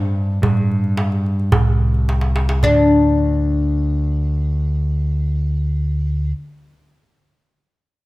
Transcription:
Already playing: G2 C4
0.42 G2, darbuka dum
0.57 darbuka ka
0.71 darbuka ka
0.84 darbuka ka
0.97 darbuka tek
1.12 darbuka ka
1.26 darbuka ka
1.40 darbuka ka
1.52 C2, darbuka dum
1.94 darbuka ka
2.09 darbuka tek
2.21 darbuka ka
2.36 darbuka tek
2.49 darbuka ka
2.63 D2 D4, darbuka dum

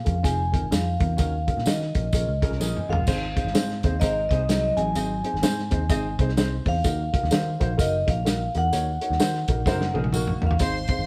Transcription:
Already playing: F5
0.05 F2 A#3 C#4 F4 G#4, kick, closed hi-hat
0.23 F1 C4 D#4 F4 G#4 G#5, kick, closed hi-hat, tambourine
0.52 C4 D#4 F4 A#4, kick, closed hi-hat
0.62 G#1
0.71 F2 C4 D#4 F4 G#4 F5, snare, closed hi-hat, tambourine
0.99 E2 C4 D#4 F4 A#4, kick, closed hi-hat
1.17 D#2 C#4 D#4 F#4 A#4 F5, kick, closed hi-hat, tambourine
1.47 C#4 D#4 F#4 A#4, kick, closed hi-hat
1.57 A#2, snare
1.65 D#3 C#4 D#4 F#4 A#4 D#5, snare, closed hi-hat, tambourine
1.82 snare
1.94 A#1 C#4 D#4 F#4 A#4, kick, closed hi-hat
2.13 A#1 C#4 F4 G#4 A#4, kick, closed hi-hat, tambourine
2.28 C#2
2.42 C#4 F4 G#4 A#4 A#5, kick, closed hi-hat
2.51 C2, snare
2.60 A#1 C4 C#4 F4 G#4 A#4 G#5, snare, tambourine
2.77 mid tom
2.89 G#1 G#3 C#4 F4 G#4 A#4 F5 F#5, floor tom
2.98 A#1
3.07 G#1 C4 D#4 G#4 C5, kick, crash, tambourine
3.36 C4 D#4 G#4 C5, kick, closed hi-hat
3.45 G#1, snare
3.54 G#2 C4 D#4 G#4 C5, snare, closed hi-hat, tambourine
3.70 snare
3.83 D#2 C4 D#4 G#4 C5, kick, closed hi-hat
4.00 G#1 C4 D#4 G#4 A#4 C5 D#5, kick, closed hi-hat, tambourine
4.29 C2 C4 D#4 G#4 C5 D#5, kick, closed hi-hat
4.49 F#3 C4 D#4 G#4 C5, snare, closed hi-hat, tambourine
4.77 A1 C4 D#4 G#4 D#5 G#5, closed hi-hat
4.95 G#1 C4 D#4 G#4 D#5, closed hi-hat, tambourine
5.24 C4 D#4 G#4 C5, closed hi-hat
5.34 G#1, snare
5.42 G#2 C4 D#4 G#4 C5, snare, closed hi-hat, tambourine
5.59 snare
5.71 D#2 C4 D#4 G#4 C5, kick, closed hi-hat
5.90 G#1 C4 D#4 G#4 D#5, kick, closed hi-hat, tambourine
6.19 C2 C4 D#4 G#4 C5, kick, closed hi-hat
6.29 snare
6.37 C4 D#4 G#4 C5, snare, closed hi-hat, tambourine
6.66 E2 C4 D#4 G#4 C5 F5, kick, open hi-hat
6.84 D#2 A#3 D#4 F#4 A#4, kick, closed hi-hat, tambourine
7.13 A#3 D#4 F#4 A#4, kick, closed hi-hat
7.24 D#2, snare
7.31 D#3 A#3 D#4 F#4 C5, snare, closed hi-hat, tambourine
7.60 A#1 A#3 D#4 F#4 C5, kick, closed hi-hat
7.77 F#1 A#3 D#4 F#4 A#4 D#5, kick, closed hi-hat, tambourine
8.07 A#1 A#3 D#4 F#4 A#4 F5, kick, closed hi-hat
8.25 A#3 D#4 F#4 A#4, snare, closed hi-hat, tambourine
8.55 E2 A#3 D#4 F#4 A#4 F#5, closed hi-hat
8.72 D#2 A#3 D#4 F#4 C#5, closed hi-hat, tambourine
9.01 A#3 D#4 F#4 C#5, closed hi-hat
9.10 D#2, snare
9.19 D#3 A#3 D#4 F#4 C5, snare, closed hi-hat, tambourine
9.34 snare
9.48 A#1 A#3 D#4 F#4 A#4, kick, closed hi-hat
9.66 F#1 A#3 C#4 D#4 F#4 A#4 C5, kick, snare, tambourine
9.81 snare
9.94 A#1 A#3 C4 D#4 F#4 G#4 A#4, high tom
10.04 high tom
10.13 A#3 D#4 F#4 A#4, mid tom, tambourine
10.27 mid tom
10.42 A1 A#3 D#4 F#4 A#4, floor tom
10.47 F5, floor tom
10.59 G#1 C4 D#4 G#4 C5 C6, kick, closed hi-hat, tambourine
10.88 C4 D#4 G#4 C5, kick, closed hi-hat
10.99 G#1

